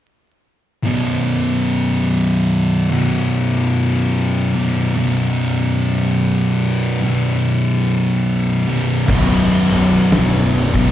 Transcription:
0.83 distorted electric guitar B1 F#2 B2
2.89 distorted electric guitar B1 F#2 B2
4.55 distorted electric guitar B1 F#2 B2
4.95 distorted electric guitar B1 F#2 B2
7.02 distorted electric guitar B1 F#2 B2
8.67 distorted electric guitar B1 F#2 B2
9.07 fingered electric bass B0, distorted electric guitar B1 F#2 B2, kick, crash
9.71 fingered electric bass B0
10.11 fingered electric bass B0, snare, open hi-hat
10.74 distorted electric guitar B1 F#2 B2, kick

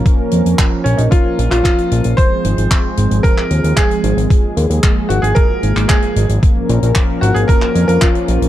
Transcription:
Already playing: analog synth pad F3 A#3 C#4 A#4
0.06 kick, closed hi-hat
0.31 analog synth bass F2, closed hi-hat
0.46 analog synth bass F2, closed hi-hat
0.58 kick, clap, closed hi-hat
0.84 analog synth bass A#1, grand piano C#4, closed hi-hat
0.97 analog synth bass A#1, grand piano D#4, closed hi-hat
1.11 grand piano F4, kick, closed hi-hat
1.39 analog synth bass A#1, closed hi-hat
1.51 analog synth bass A#1, grand piano F4, clap, closed hi-hat
1.64 grand piano F4, kick, clap, closed hi-hat
1.78 closed hi-hat
1.91 analog synth bass A#1, closed hi-hat
2.04 analog synth bass A#1, closed hi-hat
2.17 analog synth pad G#3 C4 G#4, grand piano C5, kick, closed hi-hat
2.44 analog synth bass G#1, closed hi-hat
2.58 analog synth bass G#1, closed hi-hat
2.71 kick, clap, closed hi-hat
2.97 analog synth bass G#1, closed hi-hat
3.11 analog synth bass G#1, closed hi-hat
3.23 grand piano A#4, kick, closed hi-hat
3.38 clap
3.50 analog synth bass D#2, closed hi-hat
3.64 analog synth bass D#2, closed hi-hat
3.76 grand piano G#4, kick, clap, closed hi-hat
3.91 closed hi-hat
4.04 analog synth bass G#1, closed hi-hat
4.17 analog synth bass G#1, closed hi-hat
4.30 analog synth pad A#3, kick, closed hi-hat
4.57 analog synth bass D#2, closed hi-hat
4.70 analog synth bass D#2, closed hi-hat
4.83 kick, clap, closed hi-hat
5.09 analog synth bass G#1, grand piano F#4, closed hi-hat
5.22 analog synth bass G#1, grand piano G#4, closed hi-hat
5.35 grand piano A#4, kick, closed hi-hat
5.63 analog synth bass G#1, closed hi-hat
5.76 analog synth bass G#1, clap, closed hi-hat
5.88 grand piano G#4, kick, clap, closed hi-hat
6.02 closed hi-hat
6.16 analog synth bass G#1, closed hi-hat
6.29 analog synth bass G#1, closed hi-hat
6.43 analog synth pad F3 C#4 A#4, kick, closed hi-hat
6.69 analog synth bass A#1, closed hi-hat
6.83 analog synth bass A#1, closed hi-hat
6.95 kick, clap, closed hi-hat
7.21 analog synth bass G#1, grand piano F#4, closed hi-hat
7.34 analog synth bass G#1, grand piano G#4, closed hi-hat
7.48 grand piano A#4, kick, closed hi-hat
7.62 clap
7.75 analog synth bass F2, closed hi-hat
7.88 analog synth bass F2, grand piano A#4, closed hi-hat
8.01 grand piano F4, kick, clap, closed hi-hat
8.15 closed hi-hat
8.28 analog synth bass A#1, closed hi-hat
8.42 analog synth bass A#1, closed hi-hat

